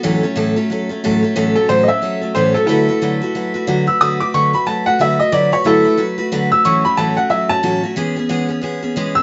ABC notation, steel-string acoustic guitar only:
X:1
M:4/4
L:1/8
Q:"Swing" 1/4=182
K:A
V:1 name="Steel-string acoustic guitar"
[A,,E,F,A,CA] [F,A,CA] [A,,E,F,A,CA] [F,A,CA] [F,A,CA] [F,A,CA] [A,,E,F,A,CA] [F,A,CA] | [A,,E,F,A,CA] [F,A,CA] [A,,E,F,A,CA] [F,A,CA] [F,A,CA] [F,A,CA] [A,,E,F,A,CA] [F,A,CA] | [D,F,A,FB] [A,FB] [D,F,A,FB] [A,FB] [F,A,FB] [A,FB] [D,F,A,FB] [A,FB] | [D,F,A,FB] [A,FB] [D,F,A,FB] [A,FB] [F,A,FB] [A,FB] [D,F,A,FB] [A,FB] |
[D,F,A,FB] [A,FB] [D,F,A,FB] [A,FB] [F,A,FB] [A,FB] [D,F,A,FB] [A,FB] | [A,,E,F,A,CF] [F,A,CF] [A,,E,F,A,CF] [F,A,CF] [F,A,CF] [F,A,CF] [A,,E,F,A,CF] [F,A,CF] | [E,G,B,CG] [B,CG] [E,G,B,CG] [B,CG] [G,B,CG] [B,CG] [E,G,B,CG] [B,CG] |]